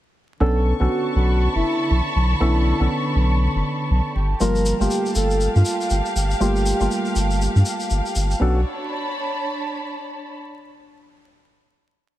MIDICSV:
0, 0, Header, 1, 7, 480
1, 0, Start_track
1, 0, Key_signature, 2, "minor"
1, 0, Tempo, 500000
1, 391, Time_signature, 4, 2, 24, 8
1, 11697, End_track
2, 0, Start_track
2, 0, Title_t, "Analog synth pad"
2, 0, Program_c, 0, 89
2, 391, Note_on_c, 0, 81, 78
2, 391, Note_on_c, 0, 85, 85
2, 3955, Note_off_c, 0, 85, 0
2, 3991, Note_on_c, 0, 77, 75
2, 3992, Note_on_c, 0, 79, 87
2, 8033, Note_off_c, 0, 77, 0
2, 8033, Note_off_c, 0, 79, 0
2, 8033, Note_off_c, 0, 81, 0
2, 11697, End_track
3, 0, Start_track
3, 0, Title_t, "String section"
3, 0, Program_c, 1, 48
3, 391, Note_on_c, 1, 50, 79
3, 544, Note_on_c, 1, 85, 88
3, 883, Note_on_c, 1, 81, 86
3, 1047, Note_on_c, 1, 83, 80
3, 3991, Note_off_c, 1, 81, 0
3, 3991, Note_off_c, 1, 83, 0
3, 3991, Note_off_c, 1, 85, 0
3, 3991, Note_on_c, 1, 67, 82
3, 4334, Note_on_c, 1, 77, 87
3, 4880, Note_off_c, 1, 50, 0
3, 8071, Note_off_c, 1, 67, 0
3, 8071, Note_off_c, 1, 77, 0
3, 8071, Note_on_c, 1, 62, 78
3, 8156, Note_on_c, 1, 73, 79
3, 8233, Note_on_c, 1, 81, 77
3, 8291, Note_on_c, 1, 83, 76
3, 9952, Note_off_c, 1, 73, 0
3, 9952, Note_off_c, 1, 81, 0
3, 9952, Note_off_c, 1, 83, 0
3, 9953, Note_off_c, 1, 62, 0
3, 11697, End_track
4, 0, Start_track
4, 0, Title_t, "Soft synth lead"
4, 0, Program_c, 2, 80
4, 391, Note_on_c, 2, 69, 105
4, 704, Note_off_c, 2, 69, 0
4, 773, Note_on_c, 2, 66, 99
4, 1063, Note_off_c, 2, 66, 0
4, 1110, Note_on_c, 2, 66, 93
4, 1424, Note_off_c, 2, 66, 0
4, 1493, Note_on_c, 2, 64, 98
4, 1881, Note_off_c, 2, 64, 0
4, 2311, Note_on_c, 2, 64, 99
4, 2727, Note_off_c, 2, 64, 0
4, 4231, Note_on_c, 2, 70, 107
4, 4544, Note_off_c, 2, 70, 0
4, 4613, Note_on_c, 2, 67, 104
4, 4903, Note_off_c, 2, 67, 0
4, 4950, Note_on_c, 2, 69, 95
4, 5264, Note_off_c, 2, 69, 0
4, 5333, Note_on_c, 2, 65, 94
4, 5721, Note_off_c, 2, 65, 0
4, 6150, Note_on_c, 2, 67, 103
4, 6567, Note_off_c, 2, 67, 0
4, 8070, Note_on_c, 2, 66, 96
4, 8257, Note_off_c, 2, 66, 0
4, 11697, End_track
5, 0, Start_track
5, 0, Title_t, "Synth stab"
5, 0, Program_c, 3, 62
5, 387, Note_on_c, 3, 59, 99
5, 390, Note_on_c, 3, 61, 91
5, 392, Note_on_c, 3, 62, 90
5, 394, Note_on_c, 3, 69, 107
5, 737, Note_off_c, 3, 59, 0
5, 739, Note_off_c, 3, 61, 0
5, 740, Note_off_c, 3, 62, 0
5, 741, Note_off_c, 3, 69, 0
5, 766, Note_on_c, 3, 59, 85
5, 771, Note_on_c, 3, 61, 78
5, 776, Note_on_c, 3, 62, 77
5, 780, Note_on_c, 3, 69, 93
5, 2284, Note_off_c, 3, 59, 0
5, 2286, Note_off_c, 3, 61, 0
5, 2289, Note_off_c, 3, 62, 0
5, 2291, Note_off_c, 3, 69, 0
5, 2307, Note_on_c, 3, 59, 96
5, 2309, Note_on_c, 3, 61, 91
5, 2312, Note_on_c, 3, 62, 91
5, 2314, Note_on_c, 3, 69, 110
5, 2657, Note_off_c, 3, 59, 0
5, 2658, Note_off_c, 3, 61, 0
5, 2659, Note_off_c, 3, 62, 0
5, 2661, Note_off_c, 3, 69, 0
5, 2686, Note_on_c, 3, 59, 84
5, 2690, Note_on_c, 3, 61, 75
5, 2695, Note_on_c, 3, 62, 76
5, 2700, Note_on_c, 3, 69, 90
5, 3975, Note_off_c, 3, 59, 0
5, 3978, Note_off_c, 3, 61, 0
5, 3980, Note_off_c, 3, 62, 0
5, 3983, Note_off_c, 3, 69, 0
5, 4227, Note_on_c, 3, 55, 99
5, 4230, Note_on_c, 3, 53, 91
5, 4232, Note_on_c, 3, 58, 90
5, 4234, Note_on_c, 3, 65, 105
5, 4577, Note_off_c, 3, 55, 0
5, 4579, Note_off_c, 3, 53, 0
5, 4579, Note_off_c, 3, 58, 0
5, 4581, Note_off_c, 3, 65, 0
5, 4606, Note_on_c, 3, 55, 82
5, 4611, Note_on_c, 3, 57, 78
5, 4615, Note_on_c, 3, 58, 77
5, 4620, Note_on_c, 3, 65, 91
5, 6124, Note_off_c, 3, 55, 0
5, 6126, Note_off_c, 3, 57, 0
5, 6129, Note_off_c, 3, 58, 0
5, 6131, Note_off_c, 3, 65, 0
5, 6147, Note_on_c, 3, 55, 97
5, 6149, Note_on_c, 3, 57, 93
5, 6152, Note_on_c, 3, 58, 91
5, 6154, Note_on_c, 3, 65, 107
5, 6497, Note_off_c, 3, 55, 0
5, 6498, Note_off_c, 3, 57, 0
5, 6500, Note_off_c, 3, 58, 0
5, 6501, Note_off_c, 3, 65, 0
5, 6526, Note_on_c, 3, 55, 86
5, 6530, Note_on_c, 3, 57, 78
5, 6535, Note_on_c, 3, 58, 77
5, 6540, Note_on_c, 3, 65, 94
5, 8044, Note_off_c, 3, 55, 0
5, 8046, Note_off_c, 3, 57, 0
5, 8048, Note_off_c, 3, 58, 0
5, 8051, Note_off_c, 3, 65, 0
5, 8060, Note_on_c, 3, 59, 87
5, 8067, Note_on_c, 3, 61, 81
5, 8074, Note_on_c, 3, 62, 80
5, 8081, Note_on_c, 3, 69, 94
5, 8252, Note_off_c, 3, 59, 0
5, 8256, Note_off_c, 3, 61, 0
5, 8260, Note_off_c, 3, 62, 0
5, 8263, Note_off_c, 3, 69, 0
5, 11697, End_track
6, 0, Start_track
6, 0, Title_t, "Analog synth bass"
6, 0, Program_c, 4, 38
6, 391, Note_on_c, 4, 35, 99
6, 698, Note_off_c, 4, 35, 0
6, 773, Note_on_c, 4, 35, 85
6, 838, Note_off_c, 4, 35, 0
6, 1111, Note_on_c, 4, 35, 88
6, 1418, Note_off_c, 4, 35, 0
6, 1493, Note_on_c, 4, 30, 82
6, 1558, Note_off_c, 4, 30, 0
6, 1831, Note_on_c, 4, 35, 100
6, 1926, Note_off_c, 4, 35, 0
6, 2071, Note_on_c, 4, 35, 97
6, 2246, Note_off_c, 4, 35, 0
6, 2310, Note_on_c, 4, 35, 99
6, 2618, Note_off_c, 4, 35, 0
6, 2693, Note_on_c, 4, 35, 89
6, 2758, Note_off_c, 4, 35, 0
6, 3030, Note_on_c, 4, 35, 87
6, 3338, Note_off_c, 4, 35, 0
6, 3412, Note_on_c, 4, 30, 79
6, 3478, Note_off_c, 4, 30, 0
6, 3750, Note_on_c, 4, 35, 103
6, 3846, Note_off_c, 4, 35, 0
6, 3990, Note_on_c, 4, 31, 99
6, 4166, Note_off_c, 4, 31, 0
6, 4230, Note_on_c, 4, 31, 102
6, 4537, Note_off_c, 4, 31, 0
6, 4613, Note_on_c, 4, 31, 83
6, 4678, Note_off_c, 4, 31, 0
6, 4950, Note_on_c, 4, 31, 85
6, 5258, Note_off_c, 4, 31, 0
6, 5333, Note_on_c, 4, 43, 81
6, 5398, Note_off_c, 4, 43, 0
6, 5670, Note_on_c, 4, 31, 102
6, 5766, Note_off_c, 4, 31, 0
6, 5911, Note_on_c, 4, 31, 93
6, 6086, Note_off_c, 4, 31, 0
6, 6151, Note_on_c, 4, 31, 104
6, 6458, Note_off_c, 4, 31, 0
6, 6533, Note_on_c, 4, 31, 86
6, 6598, Note_off_c, 4, 31, 0
6, 6870, Note_on_c, 4, 31, 87
6, 7178, Note_off_c, 4, 31, 0
6, 7253, Note_on_c, 4, 43, 78
6, 7318, Note_off_c, 4, 43, 0
6, 7591, Note_on_c, 4, 31, 100
6, 7686, Note_off_c, 4, 31, 0
6, 7830, Note_on_c, 4, 31, 99
6, 8006, Note_off_c, 4, 31, 0
6, 8070, Note_on_c, 4, 35, 97
6, 8294, Note_off_c, 4, 35, 0
6, 11697, End_track
7, 0, Start_track
7, 0, Title_t, "Drums"
7, 4231, Note_on_c, 9, 82, 57
7, 4327, Note_off_c, 9, 82, 0
7, 4373, Note_on_c, 9, 82, 25
7, 4469, Note_off_c, 9, 82, 0
7, 4472, Note_on_c, 9, 82, 102
7, 4568, Note_off_c, 9, 82, 0
7, 4620, Note_on_c, 9, 82, 38
7, 4711, Note_off_c, 9, 82, 0
7, 4711, Note_on_c, 9, 82, 60
7, 4807, Note_off_c, 9, 82, 0
7, 4856, Note_on_c, 9, 82, 27
7, 4949, Note_off_c, 9, 82, 0
7, 4949, Note_on_c, 9, 82, 101
7, 5045, Note_off_c, 9, 82, 0
7, 5093, Note_on_c, 9, 82, 44
7, 5189, Note_off_c, 9, 82, 0
7, 5190, Note_on_c, 9, 82, 57
7, 5286, Note_off_c, 9, 82, 0
7, 5334, Note_on_c, 9, 82, 26
7, 5427, Note_off_c, 9, 82, 0
7, 5427, Note_on_c, 9, 82, 101
7, 5523, Note_off_c, 9, 82, 0
7, 5578, Note_on_c, 9, 82, 43
7, 5663, Note_off_c, 9, 82, 0
7, 5663, Note_on_c, 9, 82, 60
7, 5759, Note_off_c, 9, 82, 0
7, 5813, Note_on_c, 9, 82, 28
7, 5909, Note_off_c, 9, 82, 0
7, 5918, Note_on_c, 9, 82, 97
7, 6014, Note_off_c, 9, 82, 0
7, 6054, Note_on_c, 9, 82, 43
7, 6150, Note_off_c, 9, 82, 0
7, 6154, Note_on_c, 9, 82, 50
7, 6250, Note_off_c, 9, 82, 0
7, 6298, Note_on_c, 9, 82, 25
7, 6394, Note_off_c, 9, 82, 0
7, 6395, Note_on_c, 9, 82, 98
7, 6491, Note_off_c, 9, 82, 0
7, 6533, Note_on_c, 9, 82, 40
7, 6629, Note_off_c, 9, 82, 0
7, 6634, Note_on_c, 9, 82, 52
7, 6730, Note_off_c, 9, 82, 0
7, 6771, Note_on_c, 9, 82, 28
7, 6867, Note_off_c, 9, 82, 0
7, 6874, Note_on_c, 9, 82, 84
7, 6970, Note_off_c, 9, 82, 0
7, 7013, Note_on_c, 9, 82, 42
7, 7109, Note_off_c, 9, 82, 0
7, 7118, Note_on_c, 9, 82, 53
7, 7214, Note_off_c, 9, 82, 0
7, 7259, Note_on_c, 9, 82, 29
7, 7350, Note_off_c, 9, 82, 0
7, 7350, Note_on_c, 9, 82, 92
7, 7446, Note_off_c, 9, 82, 0
7, 7488, Note_on_c, 9, 82, 38
7, 7584, Note_off_c, 9, 82, 0
7, 7585, Note_on_c, 9, 82, 59
7, 7681, Note_off_c, 9, 82, 0
7, 7736, Note_on_c, 9, 82, 28
7, 7829, Note_off_c, 9, 82, 0
7, 7829, Note_on_c, 9, 82, 104
7, 7925, Note_off_c, 9, 82, 0
7, 7976, Note_on_c, 9, 82, 38
7, 8072, Note_off_c, 9, 82, 0
7, 11697, End_track
0, 0, End_of_file